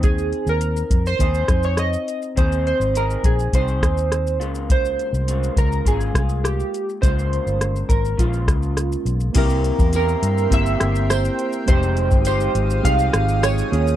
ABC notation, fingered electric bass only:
X:1
M:4/4
L:1/16
Q:1/4=103
K:Fm
V:1 name="Fingered electric bass" clef=bass
E,,3 E,,3 F,,2 E,,2 F,,4 z2 | E,,3 A,,,3 B,,,2 C,,2 E,,4 D,,2- | D,,3 C,,3 D,,2 A,,,2 C,,4 z2 | D,,3 G,,,3 A,,,2 B,,,2 D,,4 =B,,,2 |
C,,3 =E,,3 G,,2 G,,,2 G,,,4 z2 | F,,,3 G,,,3 A,,,2 C,,2 A,,,4 E,,2 |]